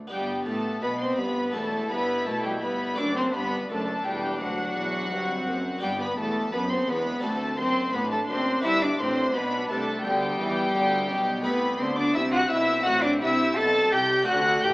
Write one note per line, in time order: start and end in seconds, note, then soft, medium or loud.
0.07 0.43 G2 medium
0.07 0.44 G3 loud
0.07 1.49 B3 medium
0.07 1.50 B3 medium
0.07 1.50 D4 medium
0.07 0.45 G5 loud
0.11 0.45 G1 medium
0.11 0.45 G2 medium
0.11 0.46 G4 medium
0.46 0.83 A1 medium
0.46 0.79 A2 medium
0.46 0.83 A2 medium
0.46 0.82 A3 medium
0.46 0.83 A4 medium
0.46 0.82 A5 loud
0.82 1.19 B1 medium
0.82 1.15 B2 medium
0.82 1.19 B2 medium
0.82 0.90 B3 medium
0.82 1.02 B4 medium
0.82 1.01 B5 loud
1.00 1.20 C4 medium
1.00 1.19 C5 medium
1.00 1.18 C6 loud
1.17 1.55 G1 medium
1.17 1.51 G2 medium
1.17 1.54 G2 medium
1.17 1.55 B3 medium
1.17 1.56 B4 medium
1.17 1.53 B5 loud
1.52 1.90 E1 medium
1.52 1.87 E2 medium
1.52 1.90 E2 medium
1.52 1.90 A3 medium
1.52 2.93 B3 medium
1.52 2.93 E4 medium
1.52 2.98 E4 medium
1.52 1.91 A4 medium
1.52 1.89 A5 loud
1.90 2.26 G1 medium
1.90 2.26 G2 medium
1.90 2.23 G2 medium
1.90 2.28 B3 loud
1.90 2.27 B4 medium
1.90 2.26 B5 loud
2.27 2.62 B1 medium
2.27 2.62 B2 medium
2.27 2.59 B2 medium
2.27 2.46 A3 medium
2.27 2.46 A4 medium
2.27 2.45 A5 loud
2.45 2.61 G3 medium
2.45 2.53 G4 medium
2.45 2.63 G5 loud
2.62 2.98 G1 medium
2.62 2.98 G2 medium
2.62 2.95 G2 medium
2.62 2.99 B3 medium
2.62 2.98 B4 medium
2.62 2.98 B5 loud
2.94 3.31 A3 medium
2.94 5.77 D4 medium
2.94 3.15 D4 loud
2.94 5.78 A4 medium
2.98 3.34 F#1 loud
2.98 3.33 F#2 medium
2.98 3.30 F#2 medium
2.98 3.68 D4 medium
2.98 3.17 D5 loud
2.98 3.16 D6 loud
3.15 3.33 C4 medium
3.15 3.34 C5 medium
3.15 3.24 C6 loud
3.34 3.69 G1 medium
3.34 3.69 G2 medium
3.34 3.66 G2 medium
3.34 3.69 B3 loud
3.34 3.70 B4 medium
3.34 3.69 B5 loud
3.69 4.05 F#1 medium
3.69 4.04 F#2 medium
3.69 4.02 F#2 medium
3.69 4.05 A3 medium
3.69 5.08 D4 medium
3.69 4.06 A4 medium
3.69 4.05 A5 loud
4.05 4.40 E1 medium
4.05 4.37 E2 medium
4.05 4.40 E2 medium
4.05 4.41 G3 medium
4.05 4.41 G4 medium
4.05 4.41 G5 loud
4.41 4.76 D2 medium
4.41 4.73 D2 medium
4.41 4.76 D2 medium
4.41 5.80 F#3 loud
4.41 5.82 F#4 loud
4.41 5.80 F#5 loud
4.76 5.11 E1 medium
4.76 5.08 E2 medium
4.76 5.11 E2 medium
5.11 5.47 G1 medium
5.11 5.47 G2 medium
5.11 5.44 G2 medium
5.11 5.81 C4 medium
5.47 5.81 F#1 medium
5.47 5.79 F#2 medium
5.47 5.82 F#2 medium
5.78 6.14 B3 medium
5.78 6.15 D4 medium
5.78 7.18 G4 medium
5.82 6.17 G1 loud
5.82 6.17 G2 medium
5.82 6.14 G2 medium
5.82 5.90 G3 loud
5.82 6.51 B3 medium
5.82 6.00 G4 loud
5.82 5.99 G5 loud
6.00 6.17 B3 medium
6.00 6.18 B4 medium
6.00 6.18 B5 loud
6.18 6.53 E1 medium
6.18 6.52 E2 medium
6.18 6.49 E2 medium
6.18 6.52 A3 loud
6.18 6.52 A4 loud
6.18 6.53 A5 loud
6.52 6.88 F#1 medium
6.52 6.84 F#2 medium
6.52 6.87 F#2 medium
6.52 7.22 B3 medium
6.52 6.70 B3 medium
6.52 6.60 B4 medium
6.52 6.71 B5 loud
6.70 6.91 C4 medium
6.70 6.87 C5 medium
6.70 6.89 C6 loud
6.87 7.23 E1 medium
6.87 7.22 E2 medium
6.87 7.19 E2 medium
6.87 7.25 B3 medium
6.87 7.23 B4 loud
6.87 7.24 B5 loud
7.20 7.57 D2 medium
7.20 7.58 A3 loud
7.20 8.58 C4 medium
7.20 7.93 C4 medium
7.20 8.59 D4 medium
7.20 8.60 F#4 medium
7.20 7.58 A4 loud
7.20 7.57 A5 loud
7.24 7.58 D2 medium
7.24 7.55 D2 medium
7.57 7.94 F#1 medium
7.57 7.93 F#2 medium
7.57 7.90 F#2 medium
7.57 7.93 C4 loud
7.57 7.93 C5 loud
7.57 7.94 C6 loud
7.93 8.29 A1 medium
7.93 8.28 A2 medium
7.93 8.26 A2 medium
7.93 8.02 B3 medium
7.93 9.31 D4 medium
7.93 8.11 B4 loud
7.93 8.11 B5 loud
8.10 8.19 A3 medium
8.10 8.19 A4 medium
8.10 8.28 A5 loud
8.28 8.63 F#1 loud
8.28 8.61 F#2 medium
8.28 8.63 F#2 medium
8.28 8.64 C4 loud
8.28 8.64 C5 loud
8.28 8.63 C6 loud
8.61 8.99 G1 loud
8.61 8.98 G2 loud
8.61 8.97 B3 medium
8.61 8.98 D4 medium
8.61 8.84 E4 loud
8.61 11.42 G4 medium
8.61 8.81 E6 loud
8.65 8.96 G2 medium
8.65 8.82 E5 loud
8.82 8.99 D4 medium
8.82 9.00 D5 medium
8.82 8.99 D6 loud
8.99 9.34 A1 medium
8.99 9.33 A2 medium
8.99 9.31 A2 medium
8.99 9.33 C4 loud
8.99 9.35 C5 loud
8.99 9.35 C6 loud
9.33 9.69 B1 loud
9.33 9.69 B2 loud
9.33 9.66 B2 medium
9.33 9.71 B3 medium
9.33 10.03 D4 medium
9.33 9.70 B4 medium
9.33 9.70 B5 loud
9.69 10.04 C2 medium
9.69 10.04 C3 medium
9.69 10.02 C3 medium
9.69 10.05 A3 loud
9.69 10.05 A4 loud
9.69 10.04 A5 loud
10.03 10.39 D2 loud
10.03 10.38 D3 medium
10.03 10.36 D3 medium
10.03 11.44 G3 loud
10.03 10.74 B3 medium
10.03 11.43 G4 loud
10.03 11.42 G5 loud
10.38 10.74 E2 medium
10.38 10.74 E3 loud
10.38 10.71 E3 medium
10.74 11.10 D2 loud
10.74 11.09 D3 medium
10.74 11.07 D3 medium
10.74 12.14 B3 medium
11.10 11.46 B1 medium
11.10 11.45 B2 medium
11.10 11.43 B2 medium
11.42 11.81 C2 loud
11.42 11.81 C3 loud
11.42 14.21 A3 medium
11.42 11.79 B3 loud
11.42 14.24 E4 medium
11.42 14.24 A4 medium
11.42 11.80 B4 loud
11.42 11.79 B5 loud
11.47 11.78 C3 medium
11.79 12.16 D2 medium
11.79 12.13 D3 medium
11.79 12.16 D3 medium
11.79 11.87 C4 medium
11.79 11.99 C5 medium
11.79 11.98 C6 loud
11.97 12.16 D4 loud
11.97 12.16 D5 loud
11.97 12.17 D6 loud
12.15 12.51 C2 medium
12.15 12.48 C3 medium
12.15 12.51 C3 loud
12.15 14.29 C4 loud
12.15 12.31 E4 loud
12.15 12.22 E5 loud
12.15 12.33 E6 loud
12.31 12.50 F#4 loud
12.31 12.50 F#5 loud
12.31 12.51 F#6 loud
12.49 12.86 B1 medium
12.49 12.86 B2 medium
12.49 12.84 B2 medium
12.49 12.85 E4 loud
12.49 12.86 E5 loud
12.49 12.87 E6 loud
12.84 13.23 A1 medium
12.84 13.19 A2 medium
12.84 13.23 A2 loud
12.84 13.05 F#4 loud
12.84 13.03 F#5 loud
12.88 13.05 F#6 loud
13.02 13.22 D4 loud
13.02 13.10 D5 medium
13.02 13.13 D6 loud
13.21 13.57 C2 medium
13.21 13.54 C3 medium
13.21 13.57 C3 medium
13.21 13.58 E4 loud
13.21 13.56 E5 loud
13.21 13.58 E6 loud
13.56 13.92 B1 loud
13.56 13.90 B2 medium
13.56 13.93 B2 loud
13.56 13.94 A4 loud
13.56 13.92 A5 loud
13.56 13.94 A6 loud
13.92 14.28 C2 medium
13.92 14.25 C3 medium
13.92 14.28 C3 loud
13.92 14.27 G4 loud
13.92 14.28 G5 loud
13.92 14.28 G6 loud
14.23 14.60 D3 medium
14.23 14.74 A3 medium
14.23 14.74 D4 medium
14.23 14.74 A4 medium
14.28 14.63 D2 loud
14.28 14.64 D3 medium
14.28 14.74 A3 medium
14.28 14.66 F#4 loud
14.28 14.63 F#5 loud
14.28 14.64 F#6 loud
14.63 14.74 A1 medium
14.63 14.74 A2 medium
14.63 14.74 A2 loud
14.63 14.74 G4 loud
14.63 14.74 G5 loud
14.63 14.74 G6 loud